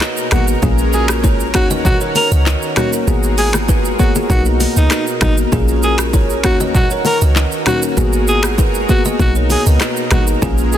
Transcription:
Already playing: analog synth pad B2 D#4 A#4, fm electric piano A#3 B3 D#4 F#4
0.00 kalimba B4 D#5, finger snap, cross-stick, clap, high bongo, shaker
0.17 shaker
0.31 log drum bass G#1, fm electric piano A#3 B3 D#4 F#4, alto saxophone F#4, kalimba G#4 B4, finger snap, cross-stick, low conga, shaker
0.48 shaker
0.62 log drum bass A#1, analog synth pad G#3 C#4, fm electric piano A#3 C#4 F4 G#4, kalimba F4 G#4, kick, low conga, shaker
0.78 shaker
0.93 kalimba F#4 A#4, alto saxophone G#4, shaker
1.08 finger snap, cross-stick, shaker
1.24 kalimba A#4 C#5, kick, high bongo, shaker
1.40 shaker
1.54 log drum bass D#2, analog synth pad D#3 C#4 F#4, fm electric piano A#3 C#4 D#4 F#4, alto saxophone F#4, kalimba A#4 C#5, finger snap, kick, cross-stick, shaker
1.71 kalimba B4 D#5, low bongo, shaker
1.85 alto saxophone F#4, kick, low conga, shaker
2.01 kalimba A#4 C#5, shaker
2.15 alto saxophone A#4, open hi-hat, low bongo, shaker
2.32 log drum bass C#2, kalimba B4 D#5, shaker
2.46 kalimba A#4 D#5, clap, high bongo, shaker
2.62 shaker
2.76 fm electric piano A#3 C#4 D#4 F#4, alto saxophone F#4, kalimba A#4 C#5, finger snap, cross-stick, low conga, shaker
2.93 kalimba F#4 A#4, shaker
3.07 log drum bass G#1, analog synth pad G#3 F#4 G#4 A#4, fm electric piano A#3 B3 F#4 G#4, kalimba D#4 F#4, low conga, shaker
3.23 shaker
3.38 kalimba F4 G#4, alto saxophone G#4, open hi-hat, shaker
3.53 finger snap, cross-stick, low bongo, shaker
3.69 kalimba G#4 B4, kick, high bongo, shaker
3.85 shaker
3.99 fm electric piano A#3 B3 F#4 G#4, alto saxophone F#4, kalimba A#4 C#5, kick, shaker
4.15 kalimba F4 G#4, low bongo, shaker
4.29 log drum bass B1, analog synth pad B2 D#4 A#4, fm electric piano A#3 B3 D#4 F#4, alto saxophone F#4, kick, low conga, shaker
4.45 kalimba F#4 A#4, shaker
4.60 open hi-hat, low bongo, shaker
4.76 log drum bass C#2, alto saxophone D#4, kalimba G#4 B4, shaker
4.90 alto saxophone D#4, kalimba F#4 A#4, finger snap, cross-stick, clap, high bongo, shaker
5.07 shaker
5.21 log drum bass G#1, fm electric piano A#3 B3 D#4 F#4, alto saxophone D#4, kalimba D#4 F#4, finger snap, kick, cross-stick, low conga, shaker
5.38 shaker
5.52 log drum bass A#1, analog synth pad G#3 C#4, fm electric piano A#3 C#4 F4 G#4, kalimba F4 G#4, kick, low conga, shaker
5.68 shaker
5.83 kalimba F#4 A#4, alto saxophone G#4, shaker
5.98 finger snap, cross-stick, shaker
6.13 kalimba A#4 C#5, kick, high bongo, shaker
6.30 shaker
6.44 log drum bass D#2, analog synth pad D#3 F#4, fm electric piano A#3 C#4 D#4 F#4, alto saxophone F#4, kalimba A#4 C#5, finger snap, kick, cross-stick, shaker
6.60 kalimba B4 D#5, low bongo, shaker
6.75 alto saxophone F#4, kick, low conga, shaker
6.90 kalimba A#4 C#5, shaker
7.05 alto saxophone A#4, open hi-hat, low bongo, shaker
7.22 log drum bass C#2, kalimba B4 D#5, shaker
7.36 kalimba A#4 D#5, clap, high bongo, shaker
7.52 shaker
7.66 fm electric piano A#3 C#4 D#4 F#4, alto saxophone F#4, kalimba A#4 C#5, finger snap, cross-stick, low conga, shaker
7.82 kalimba F#4 A#4, shaker
7.97 log drum bass G#1, analog synth pad G#3 F#4 G#4 A#4, fm electric piano A#3 B3 F#4 G#4, kalimba D#4 F#4, low conga, shaker
8.13 shaker
8.28 kalimba F4 G#4, alto saxophone G#4, shaker
8.43 finger snap, cross-stick, shaker
8.58 kalimba G#4 B4, kick, high bongo, shaker
8.75 shaker
8.89 fm electric piano A#3 B3 F#4 G#4, alto saxophone F#4, kalimba G#4 B4, kick, shaker
9.05 kalimba B4 D#5, low bongo, shaker
9.19 log drum bass B1, analog synth pad B2 D#4 A#4, fm electric piano A#3 B3 D#4 F#4, alto saxophone F#4, kick, low conga, shaker
9.35 kalimba A#4 C#5, shaker
9.50 alto saxophone G#4, open hi-hat, low bongo, shaker
9.66 log drum bass C#2, kalimba B4 D#5, shaker
9.80 kalimba B4 D#5, finger snap, cross-stick, clap, high bongo, shaker
9.97 shaker
10.11 log drum bass G#1, fm electric piano A#3 B3 D#4 F#4, alto saxophone F#4, kalimba G#4 B4, finger snap, cross-stick, low conga, shaker
10.27 shaker
10.42 log drum bass A#1, analog synth pad G#3 C#4, fm electric piano A#3 C#4 F4 G#4, kalimba F4 G#4, kick, low conga, shaker
10.58 shaker
10.73 kalimba F#4 A#4, alto saxophone G#4, shaker

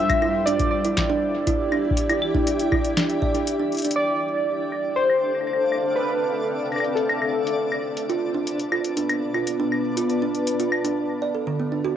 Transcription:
Already playing: ambient pad E4 A4 G5, synth keys E5
0.10 kick, closed hi-hat, claves
0.22 kalimba E4, claves
0.29 ambient pad D5
0.46 kalimba D4, synth keys D5, closed hi-hat
0.53 ambient pad G4
0.59 kick, closed hi-hat
0.71 synth keys D5
0.85 kalimba E4, closed hi-hat
0.97 kick, snare, closed hi-hat
1.10 kalimba D4
1.47 kalimba E4, kick, closed hi-hat
1.72 kalimba D4, claves
1.91 kick
1.97 closed hi-hat
2.10 kalimba E4, closed hi-hat, claves
2.22 claves
2.34 kalimba D4, kick
2.47 closed hi-hat
2.59 closed hi-hat
2.72 kalimba E4, kick, claves
2.85 closed hi-hat
2.97 kalimba D4, snare, closed hi-hat
3.10 closed hi-hat
3.22 kalimba D5, kick
3.34 kalimba D4, closed hi-hat
3.47 closed hi-hat
3.60 kalimba D4
3.72 closed hi-hat
3.75 closed hi-hat
3.77 closed hi-hat
3.80 closed hi-hat
3.82 closed hi-hat
3.85 kalimba D4, closed hi-hat
3.91 closed hi-hat
3.96 ambient pad D4, synth texture D4 D5, synth keys D5, closed hi-hat
4.04 ambient pad A4
4.10 closed hi-hat
4.22 ambient pad C4 F5
4.47 closed hi-hat
4.60 closed hi-hat
4.70 ambient pad E5 G5, claves
4.85 closed hi-hat
4.91 closed hi-hat
4.96 synth keys C5
5.10 closed hi-hat, claves
5.35 claves
5.41 claves
5.47 closed hi-hat, claves
5.53 claves
5.72 claves
5.96 synth keys B4, closed hi-hat
6.10 closed hi-hat
6.60 closed hi-hat
6.66 closed hi-hat
6.72 closed hi-hat, claves
6.76 closed hi-hat, claves
6.80 claves
6.85 closed hi-hat
6.96 synth keys A4, closed hi-hat
7.10 closed hi-hat, claves
7.22 claves
7.47 closed hi-hat
7.72 claves
7.97 ambient pad B3, closed hi-hat
8.09 kalimba F4, closed hi-hat
8.23 ambient pad D5
8.27 ambient pad B4
8.34 kalimba D4
8.47 closed hi-hat
8.59 closed hi-hat
8.72 kalimba F4, claves
8.84 ambient pad A5, closed hi-hat
8.97 kalimba D4, closed hi-hat
9.09 closed hi-hat, claves
9.34 kalimba F4, claves
9.47 closed hi-hat
9.60 kalimba D4
9.72 claves
9.97 kalimba F4, closed hi-hat
10.09 closed hi-hat
10.22 kalimba D4
10.34 closed hi-hat
10.47 closed hi-hat
10.59 kalimba F4, closed hi-hat
10.72 claves
10.84 kalimba D4, closed hi-hat
11.22 kalimba D5
11.35 kalimba A4
11.47 kalimba D3
11.60 kalimba B3
11.72 kalimba D4
11.85 kalimba F#4

